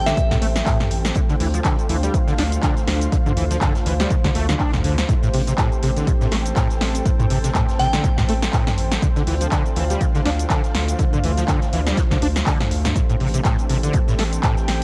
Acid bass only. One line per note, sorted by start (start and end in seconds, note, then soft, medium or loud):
0.06 0.19 D3 medium
0.17 0.22 A2 medium
0.31 0.37 A2 loud
0.42 0.46 A3 loud
0.66 0.78 A2 medium
1.16 1.20 D3 medium
1.29 1.35 D3 loud
1.40 1.48 E3 medium
1.54 1.60 F3 medium
1.65 1.76 D3 medium
1.89 1.97 E3 medium
2.03 2.15 G3 medium
2.14 2.18 D3 medium
2.28 2.34 D3 loud
2.38 2.43 D4 loud
2.63 2.74 D3 medium
3.12 3.17 D3 medium
3.26 3.32 D3 loud
3.37 3.44 E3 medium
3.51 3.57 F3 medium
3.61 3.73 D3 medium
3.86 3.94 E3 medium
4.00 4.12 G3 medium
4.11 4.15 D3 medium
4.25 4.30 D3 loud
4.35 4.47 A3 loud
4.49 4.55 D3 medium
4.60 4.71 D4 medium
4.74 4.83 D2 medium
4.84 4.96 D3 medium
5.09 5.14 A2 medium
5.23 5.29 A2 loud
5.34 5.41 C3 medium
5.47 5.53 C3 medium
5.58 5.70 A2 medium
5.83 5.90 C3 medium
5.97 6.09 D3 medium
6.07 6.12 A2 medium
6.21 6.27 A2 loud
6.32 6.36 A3 loud
6.57 6.68 A2 medium
7.06 7.10 A2 medium
7.20 7.25 A2 loud
7.30 7.38 C3 medium
7.44 7.50 C3 medium
7.55 7.66 A2 medium
7.79 7.87 C3 medium
7.93 8.06 D3 medium
8.04 8.09 A2 medium
8.18 8.24 A2 loud
8.29 8.33 A3 loud
8.53 8.65 A2 medium
9.02 9.07 D3 medium
9.16 9.22 D3 loud
9.27 9.35 E3 medium
9.41 9.47 F3 medium
9.52 9.63 D3 medium
9.76 9.84 E3 medium
9.90 10.02 G3 medium
10.01 10.05 D3 medium
10.15 10.21 D3 loud
10.25 10.30 D4 loud
10.50 10.61 D3 medium
10.99 11.04 D3 medium
11.13 11.19 D3 loud
11.24 11.31 E3 medium
11.38 11.43 F3 medium
11.48 11.60 D3 medium
11.73 11.81 E3 medium
11.87 11.99 G3 medium
11.97 12.02 D3 medium
12.11 12.17 D3 loud
12.22 12.27 D4 loud
12.47 12.58 D3 medium
12.96 13.00 A2 medium
13.10 13.16 A2 loud
13.20 13.28 C3 medium
13.34 13.40 C3 medium
13.45 13.56 A2 medium
13.69 13.77 C3 medium
13.83 13.96 D3 medium
13.94 13.99 A2 medium
14.08 14.14 A2 loud
14.19 14.23 A3 loud
14.43 14.55 A2 medium